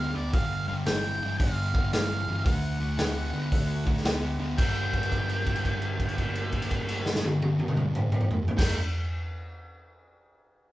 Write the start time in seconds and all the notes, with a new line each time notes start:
Already playing: D2 D3 B3 F5
0.14 D2 D3 B3 D5
0.33 G1 G2 D3 F5, kick, open hi-hat
0.68 G1 G2 D3 F5
0.86 G1 G2 E3 G5, snare, open hi-hat
1.21 G1 G2 E3
1.39 G1 G2 D3 F5, kick, open hi-hat
1.74 G1 G2 D3, kick
1.93 G1 G2 E3 F5, snare, open hi-hat
2.28 G1 G2 E3
2.45 D2 D3 A3 F#5, kick, open hi-hat
2.80 D2 D3 A3
2.98 D2 D3 B3, snare, open hi-hat
3.33 D2 D3 B3
3.51 D2 D3 A3, kick, open hi-hat
3.86 D2 D3 A3, kick
3.97 snare
4.04 D2 D3 B3, snare, open hi-hat
4.39 D2 D3 B3
4.57 G1 G2 D3 G3 A#3 D4 A#4 G5, kick, crash
4.93 kick, crash
5.03 crash
5.12 kick, crash
5.29 crash
5.46 kick, crash
5.56 crash
5.65 kick, crash
5.82 crash
6.00 kick, crash
6.09 crash
6.18 kick, crash
6.35 crash
6.52 kick, crash
6.62 crash
6.71 kick, crash
6.89 crash
7.06 snare
7.15 snare
7.25 high tom
7.42 high tom
7.60 high tom
7.68 mid tom
7.77 mid tom
7.95 mid tom
8.12 mid tom
8.21 mid tom
8.31 floor tom
8.48 floor tom
8.57 G1 G2 D3 G3 A#3 D4 A#4 G5, kick, snare, crash